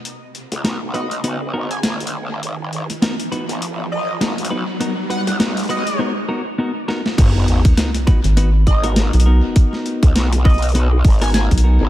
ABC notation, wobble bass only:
X:1
M:4/4
L:1/16
Q:"Swing 16ths" 1/4=101
K:G#m
V:1 name="Wobble bass" clef=bass
z3 C,, B,,,6 G,,,3 B,,,2 G,,, | G,,, F,,, G,,, z4 G,,,3 G,,,3 B,,,2 z | z3 C,, B,,,3 z8 z | G,,, F,,, G,,, z6 z G,,,3 z3 |
z3 C,, B,,,6 G,,,3 z2 G,,, |]